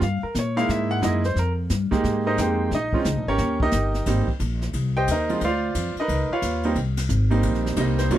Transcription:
0.01 G2 F5, brush sweep, kick, snare
0.23 A#4, muted upright bass stroke
0.35 A#2, kick, snare, hi-hat pedal
0.39 C#5
0.57 G#3 A#3 D#4 E4 F5, snare
0.69 G#2 E5, brush sweep, kick, snare
0.91 F#5
1.02 F#2 G#3 A#3 D#4 E4 D#5, kick, snare, hi-hat pedal
1.24 C5, snare
1.36 F2 A#4, brush sweep, kick, snare
1.70 G2, kick, snare, hi-hat pedal
1.91 G#3 A#3 D#4 G4, muted upright bass stroke, kick, snare
2.04 G#2, brush sweep, kick, snare
2.27 D#4 A#4 C5 D#5
2.37 F2 G#3 A#3 C4 D#4 G#4 C5 G5, kick, snare, hi-hat pedal
2.42 G4
2.71 A#1 D#5, brush sweep, kick, snare
2.76 D#4
2.93 G#3 C4 C#4 F4, kick
3.05 C#2, kick, snare, hi-hat pedal
3.16 A#1
3.27 G#1 C#4 G4 A#4 C#5
3.38 D#2, brush sweep, kick, snare
3.60 D#4 G4 A#4 D#5, kick
3.71 G1, kick, snare, hi-hat pedal
3.94 snare
4.06 G#1 G3 A#3 C4 D#4, kick, snare, ride
4.28 kick
4.40 A#1, kick, hi-hat pedal, ride
4.62 snare
4.73 C2, kick, ride
4.97 G4 C5 D#5 G5
5.08 D#2 A#4 D#5, kick, hi-hat pedal, ride
5.12 D#4 C5
5.29 F3 G#3 C4 F4, ride
5.41 D2 F5, kick, ride
5.45 F4 C5 D5
5.75 F2, kick, hi-hat pedal, ride
5.96 muted upright bass stroke, ride
6.00 D#4 A#4 B4 D#5
6.08 C#2, kick, ride
6.30 F4 B4 C#5 F5, muted upright bass stroke
6.42 D#2, kick, hi-hat pedal, ride
6.63 G3 A#3 C4 D#4, ride
6.75 C2, kick, ride
6.97 snare, ride
7.09 G#1, kick, hi-hat pedal
7.30 G3 A#3 C4 D#4, ride
7.43 A#1, kick, ride
7.54 snare
7.66 snare
7.76 C2 G3 A#3 C4 D#4, kick, hi-hat pedal, ride
7.80 D#5
7.98 C5, snare, ride
8.10 D#2 F#3 A#3 C#4 F4, kick, ride
8.14 C#5

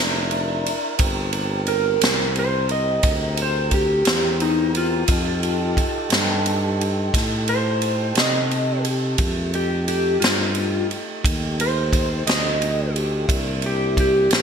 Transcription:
Already playing: F1 D4 E4 A#4
0.31 ride
0.66 ride
0.98 G1 C4 G4 A#4, kick, ride
1.33 ride
1.67 A#4, ride
2.01 C2, snare, ride
2.36 C5, ride
2.69 D#5, ride
3.03 D2, kick, ride
3.37 ride
3.42 C5
3.71 G4, kick, ride
4.05 E2, snare, ride
4.40 D#4, ride
4.75 F4, ride
5.08 F2 D#4 G4, kick, ride
5.12 A4
5.43 ride
5.77 kick, ride
6.10 G2, snare, ride
6.46 ride
6.81 ride
7.14 A2, kick, snare, ride
7.48 C5, ride
7.82 ride
8.15 C3 D#5, snare, ride
8.51 ride
8.85 G4, ride
9.18 F2 G#3 A#3 E4, kick, ride
9.54 A3 D#4 G4, ride
9.88 G4, ride
10.20 G2 F4, ride
10.24 snare
10.55 ride
10.91 ride
11.24 D#2, kick, ride
11.60 C5, ride
11.93 kick, ride
12.26 D2 D#5, snare, ride
12.62 ride
12.94 G4, ride
13.27 C2 A#3 D4 E4, kick, ride
13.62 ride
13.66 G4
13.97 G4, kick, ride
14.31 A#1 G4, snare, ride

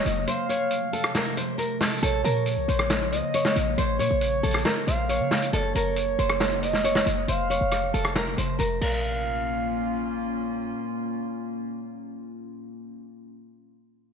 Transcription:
Already playing: C#3 F#3 A#3 D#5
0.06 F1, closed hi-hat
0.27 C3 F3 A3 C5 F5, closed hi-hat
0.49 C#5, closed hi-hat
0.71 closed hi-hat
0.93 A4, closed hi-hat
1.04 cross-stick
1.15 A#4, snare, closed hi-hat
1.37 C5, closed hi-hat
1.58 A#4, closed hi-hat
1.81 A4, snare, open hi-hat
2.03 A#1 C#3 A#3 A4 C#5, closed hi-hat
2.24 A#2 A#4, closed hi-hat
2.46 closed hi-hat
2.57 C#2
2.68 A#1 C5, closed hi-hat
2.79 cross-stick
2.90 snare, closed hi-hat
3.12 C#2 D#5, closed hi-hat
3.34 C#5, closed hi-hat
3.45 snare
3.56 A#1, closed hi-hat
3.78 A#1 C5 C#5, closed hi-hat
3.99 A#2 C#5, closed hi-hat
4.11 A#1
4.21 closed hi-hat
4.43 A#1 A4, closed hi-hat
4.51 cross-stick, closed hi-hat
4.58 closed hi-hat
4.65 A#4, snare, closed hi-hat
4.87 A#1 C5 F5, closed hi-hat
5.09 C#5, closed hi-hat
5.20 C#3
5.31 snare, closed hi-hat
5.42 closed hi-hat
5.53 F#1 C#3 F#3 A4 C#5, closed hi-hat
5.75 F#1 A#4, closed hi-hat
5.96 closed hi-hat
6.19 F#1 C5, closed hi-hat
6.30 cross-stick
6.40 snare, closed hi-hat
6.62 D#5, closed hi-hat
6.73 snare
6.84 C#5, closed hi-hat
6.95 snare
7.06 F#1, closed hi-hat
7.28 F1 C3 F3 A3 C5 F5, closed hi-hat
7.50 C#5, closed hi-hat
7.61 F1
7.71 cross-stick, closed hi-hat
7.94 F1 A4, closed hi-hat
8.05 cross-stick
8.15 A#4, snare, closed hi-hat
8.38 F1 C5, closed hi-hat
8.59 F1 A#4, closed hi-hat
8.81 A#1 A#2 A#3 C#4 F4 A#4 F5, crash

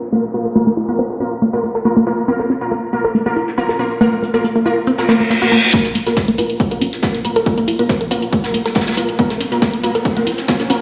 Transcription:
Already playing: downlifter
0.02 snare
0.12 A#3 F4 A#4
0.24 snare
0.34 A#3 F4 A#4, closed hi-hat
0.45 A#4
0.55 A#3 F4 A#4, closed hi-hat
0.67 A#3
0.77 F4, closed hi-hat
0.88 A#3 F4 A#4
0.99 C4, closed hi-hat
1.10 A#4, closed hi-hat
1.20 A#3 C#4 F4 A#4, closed hi-hat
1.41 A#3, closed hi-hat
1.53 A#3 F4 A#4, snare
1.64 A#3, closed hi-hat
1.75 A#4, snare
1.85 A#3 F4 A#4, closed hi-hat
1.97 A#3
2.06 A#3 F4 A#4, snare, closed hi-hat
2.28 A#3 C4 F4 A#4, closed hi-hat
2.40 A#4, snare
2.50 C#4, snare, closed hi-hat
2.61 A#3 F4 A#4, snare
2.71 A#3, closed hi-hat
2.93 A#3 F4 A#4, closed hi-hat
3.05 A#4, closed hi-hat
3.15 A#3, closed hi-hat
3.26 A#3 F4 A#4, closed hi-hat
3.36 F4, closed hi-hat
3.48 snare
3.57 A#3 C4 F4 A#4, closed hi-hat
3.69 A#4, snare
3.79 A#3 C#4 F4 A#4, closed hi-hat
4.01 A#3 F4 A#4, closed hi-hat
4.23 A#3, closed hi-hat
4.34 A#3 F4 A#4
4.44 A#3, closed hi-hat
4.55 A#3, closed hi-hat
4.66 A#3 F4 A#4, closed hi-hat
4.87 C4, closed hi-hat, reverse cymbal
4.98 A#3 F4 A#4, snare
5.09 A#3 F4 A#4, snare, closed hi-hat
5.20 A#3, snare
5.30 A#3, snare, closed hi-hat
5.42 A#3 F4 F#4 A#4
5.52 A#3, snare, closed hi-hat
5.73 A#3 F4 A#4, kick, closed hi-hat, riser
5.85 snare, closed hi-hat
5.95 A#3, snare, closed hi-hat, open hi-hat
6.07 A#3 F4 A#4, snare, closed hi-hat
6.17 A#3, kick, snare, closed hi-hat
6.28 A#3, closed hi-hat
6.38 A#3 F4 A#4, closed hi-hat, open hi-hat
6.50 closed hi-hat
6.60 C4, kick, closed hi-hat
6.71 A#3 F4 A#4, closed hi-hat
6.81 C#4, closed hi-hat, open hi-hat
6.93 snare, closed hi-hat
7.03 A#3 F4 A#4, kick, snare, closed hi-hat
7.14 snare, closed hi-hat
7.24 A#3 F4 A#4, closed hi-hat, open hi-hat
7.36 A#4, closed hi-hat
7.46 A#3 F4 A#4, kick, closed hi-hat
7.58 A#3, closed hi-hat
7.68 F4, closed hi-hat, open hi-hat
7.79 A#3 F4 A#4, closed hi-hat
7.89 C4, kick, snare, closed hi-hat
8.00 A#4, closed hi-hat
8.11 A#3 C#4 F4 A#4, closed hi-hat, open hi-hat
8.22 closed hi-hat
8.32 A#3, kick, closed hi-hat
8.44 A#3 F4 A#4, snare, closed hi-hat
8.54 A#3, closed hi-hat, open hi-hat
8.65 A#4, snare, closed hi-hat
8.75 A#3 F4 A#4, kick, snare, closed hi-hat
8.81 snare, closed hi-hat
8.87 A#3, snare, closed hi-hat
8.92 snare, closed hi-hat
8.97 A#3 F4 A#4, closed hi-hat, open hi-hat
9.09 closed hi-hat
9.19 A#3 C4 F4 A#4, kick, closed hi-hat
9.30 A#4, snare, closed hi-hat
9.40 C#4, snare, closed hi-hat, open hi-hat
9.52 A#3 F4 A#4, snare, closed hi-hat
9.62 A#3, kick, snare, closed hi-hat
9.74 closed hi-hat
9.84 A#3 F4 A#4, closed hi-hat, open hi-hat
9.95 A#4, closed hi-hat
10.04 A#3, kick, closed hi-hat
10.17 A#3 F4 A#4, closed hi-hat
10.27 F4, closed hi-hat, open hi-hat
10.38 snare, closed hi-hat
10.48 A#3 C4 F4 A#4, kick, snare, closed hi-hat
10.60 A#4, snare, closed hi-hat
10.70 A#3 C#4 F4 A#4, closed hi-hat, open hi-hat

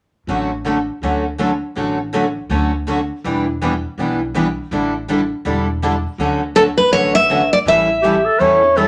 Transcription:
0.27 A1 D3 F#3 A3 C#4 F#4 A4
0.65 D3 F#3 A3 C#4 F#4 A4
1.02 D2 D3 F#3 A3 C#4 F#4 A4
1.39 D3 F#3 A3 C#4 F#4 A4
1.75 A1 D3 F#3 A3 C#4 F#4 A4
2.13 D3 F#3 A3 C#4 F#4 A4
2.50 D2 D3 F#3 A3 C#4 F#4 A4
2.88 D3 F#3 A3 C#4 F#4 A4
3.24 E1 E3 G3 B3 D4 E4 G4 B4
3.61 E3 G3 B3 D4 E4 G4 B4
3.98 B1 E3 G3 B3 D4 E4 G4 B4
4.34 E3 G3 B3 D4 E4 G4 B4
4.71 A1 D3 G3 D4 E4 A4
5.09 D3 G3 D4 E4 A4
5.45 E1 D3 G3 D4 E4 A4
5.83 D3 G3 D4 E4 A4
6.18 D2 D3 F#3 A3 C#4 F#4 A4
6.56 D3 F#3 A3 C#4 F#4 A4
6.78 B4
6.91 A1 D3 F#3 A3 C#4 F#4 A4 C#5
7.14 A3 C#4 F#4 E5
7.29 D3 F#3 A3 C#4 F#4 A4
7.53 D5
7.65 A1 E3 G3 C#4 E4 A4 E5
8.02 E3 G3 C#4 E4 G4 A4
8.25 A4
8.39 E2 E3 G3 C#4 E4 A4 C#5
8.62 C#4 E4 A4
8.76 E3 G3 C#4 E4 A4

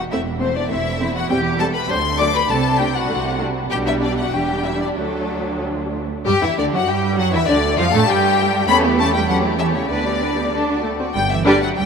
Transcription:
0.11 E1 E2 A3 C4 E4 E5
0.41 A3 C4 C5
0.55 D4 D5
0.70 E1 E2 A3 C4 E4 E5
0.99 A3 C4
1.15 F#4 F#5
1.30 E1 E2 G3 C4 G4 G5
1.59 G3 C4 A4 A5
1.74 B4 B5
1.88 D2 F#3 D4 C5 C6
2.19 F#3 D4 D5 D6
2.34 B4 B5
2.49 C2 C3 A3 D4 A4 A5
2.79 A3 D4 G4 G5
2.94 F#4 F#5
3.09 C2 C3 A3 D4
3.39 A3 D4
3.69 B1 B2 G3 D4 G4 G5
3.86 E4 E5
4.01 D4 D5
4.17 F#4 F#5
4.32 E1 E2 G3 D4 G4 G5
4.65 E4 E5
4.81 D4 D5
4.97 D2 F#3 A3 D4 A4
6.26 G2 G3 G4 G5
6.42 E2 E3 E4 E5
6.58 D2 D3 D4 D5
6.73 F#2 F#3 F#4 F#5
6.88 G2 G3 G4 G5
7.18 F#2 F#3 F#4 F#5
7.33 E2 E3 E4 E5
7.48 D2 D3 D4 D5
7.77 F2 F3 F4 F5
7.93 A2 A3 A4 A5
8.07 G2 G3 G4 G5
8.67 E2 A3 B3 C#4 G4 A4 B5
8.82 G3 A3 E4 G4
8.97 A3 C#4 G4 A4 A5
9.12 G3 A3 E4 G4 G5
9.27 F#3 A3 C#4 G4 A4 F#5
9.43 G3 A3 E4 G4
9.58 E3 A3 C#4 G4 A4 E5
9.73 C#3 G3 A3 E4 G4 C#5
9.89 D2 D3 B3 D4 B4 D5
10.05 G3 B3 G4 D5
10.21 B3 D4 B4
10.36 G3 B3 G4 D5
10.52 D4 A4
10.68 F#4 D5
10.83 A3 A4
10.99 C4 F#4 D5
11.14 G1 G3 G5
11.31 E3 E5
11.45 D3 G3 D4 G4 B4 D5
11.62 F#3 F#5
11.77 D2 G3 G5

